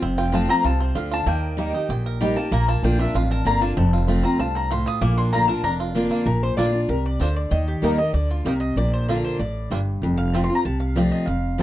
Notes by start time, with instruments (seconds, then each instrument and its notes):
Already playing: five-string banjo F4
0.02 upright bass F1, steel-string acoustic guitar F2, five-string banjo C4
0.18 five-string banjo F4, mandolin G5
0.32 steel-string acoustic guitar F3 A3 C4 F4, five-string banjo F4, mandolin A5
0.48 five-string banjo C4, steel-string acoustic guitar C4 F4, mandolin A#5
0.64 upright bass C2, steel-string acoustic guitar C3, five-string banjo F4, mandolin A5
0.80 five-string banjo C4, mandolin C5
0.95 upright bass D2, steel-string acoustic guitar D3, five-string banjo F4, mandolin F5
1.11 five-string banjo F4, mandolin A5
1.26 upright bass D#2, steel-string acoustic guitar D#3, five-string banjo A#3, mandolin G5
1.57 steel-string acoustic guitar G3 A#3 D#4 G4, five-string banjo A#3
1.73 five-string banjo D#4, steel-string acoustic guitar D#4 G4
1.89 upright bass A#1, steel-string acoustic guitar A#2, five-string banjo G4
2.06 five-string banjo A#4
2.21 steel-string acoustic guitar G3 A#3 D#4 G4, five-string banjo G4
2.36 five-string banjo A#3, steel-string acoustic guitar D#4 G4, mandolin A5
2.51 upright bass A#1, steel-string acoustic guitar A#2, five-string banjo A#3, mandolin A#5
2.68 five-string banjo F4, mandolin A5
2.82 upright bass A#1, steel-string acoustic guitar D3 A#3 D4 F4, five-string banjo A#3, mandolin G5
2.99 five-string banjo D4, steel-string acoustic guitar D4 F4, mandolin E5
3.14 upright bass A1, steel-string acoustic guitar F2, five-string banjo F4, mandolin F5
3.31 five-string banjo A#4, mandolin A5
3.45 upright bass G1, steel-string acoustic guitar D3 A#3 D4 F4, five-string banjo F4, mandolin A#5
3.61 five-string banjo A#3, steel-string acoustic guitar D4 F4, mandolin A5
3.77 upright bass F1, steel-string acoustic guitar F2, five-string banjo C4
3.93 five-string banjo F4
4.07 steel-string acoustic guitar F3 A3 C4 F4, five-string banjo F4
4.23 five-string banjo C4, steel-string acoustic guitar C4 F4, mandolin A#5
4.39 upright bass C2, steel-string acoustic guitar G2, five-string banjo F4, mandolin A5
4.55 five-string banjo C4, mandolin A#5
4.71 steel-string acoustic guitar A2, five-string banjo F4, mandolin C6
4.86 five-string banjo F4, mandolin D#6
5.01 upright bass A#1, steel-string acoustic guitar A#2, five-string banjo A#3, mandolin D6
5.18 five-string banjo D4, mandolin C6
5.33 steel-string acoustic guitar D3 A#3 D4 F4, five-string banjo F4, mandolin A#5
5.48 steel-string acoustic guitar D4 F4, five-string banjo A#4, mandolin A5
5.63 upright bass F1, steel-string acoustic guitar F2, five-string banjo D4, mandolin A#5
5.80 five-string banjo F4
5.95 steel-string acoustic guitar D3 A#3 D4 F4, five-string banjo D4
6.11 five-string banjo A#3
6.26 upright bass A#1, steel-string acoustic guitar A#2, resonator guitar played with a steel bar A#4
6.43 resonator guitar played with a steel bar C5
6.57 upright bass A#1, steel-string acoustic guitar D3 A#3 D4 F4, five-string banjo A#3 D4 F4, resonator guitar played with a steel bar D5
6.72 steel-string acoustic guitar D4 F4
6.89 upright bass C2, steel-string acoustic guitar C3, mandolin A#4
7.06 mandolin D5
7.20 upright bass D2, steel-string acoustic guitar D3, five-string banjo A#3 D4 F4, mandolin C5
7.36 mandolin D5
7.51 upright bass D#2, steel-string acoustic guitar D#3, mandolin D#5
7.68 mandolin G4
7.82 upright bass D#2, steel-string acoustic guitar G3 A#3 D#4 G4, five-string banjo A#3 D#4 G4, mandolin A#4
7.98 steel-string acoustic guitar D#4 G4, mandolin D#5
8.14 upright bass D2, steel-string acoustic guitar D3, mandolin D5
8.31 mandolin F4
8.45 upright bass C2, steel-string acoustic guitar C3, five-string banjo A#3 D#4 G4, mandolin A#4
8.60 mandolin D#5
8.76 upright bass A#1, steel-string acoustic guitar A#2, mandolin D5
8.93 mandolin C5
9.08 steel-string acoustic guitar D3 A#3 D4 F4, five-string banjo A#3 D4 F4, mandolin A4
9.24 mandolin C5
9.39 upright bass A1, steel-string acoustic guitar A2, mandolin D5
9.71 upright bass G1, steel-string acoustic guitar G2, five-string banjo A#3 D4 F4
10.02 upright bass F1, steel-string acoustic guitar F2
10.18 mandolin F5
10.33 steel-string acoustic guitar F3 A3 C4 F4, five-string banjo C4 F4, mandolin A5
10.44 mandolin C6
10.49 steel-string acoustic guitar C4 F4
10.55 mandolin A#5
10.65 upright bass C2, steel-string acoustic guitar C3, mandolin A5
10.80 mandolin F5
10.96 steel-string acoustic guitar F3 A3 C4 F4, five-string banjo C4 F4, mandolin D5
11.12 mandolin D#5
11.26 upright bass F1, steel-string acoustic guitar F2, mandolin F5
11.58 steel-string acoustic guitar F3 A3 C4